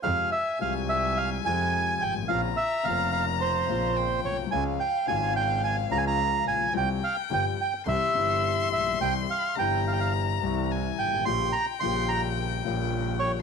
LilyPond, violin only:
\new Staff \with { instrumentName = "Violin" } { \time 4/4 \key f \minor \tempo 4 = 107 aes''1 | bes''2. g''4 | f''2.~ f''8.~ f''32 aes''32 | g''2 c'''2~ |
c'''4 bes''2 aes''4 | g''2.~ g''8.~ g''32 r32 | }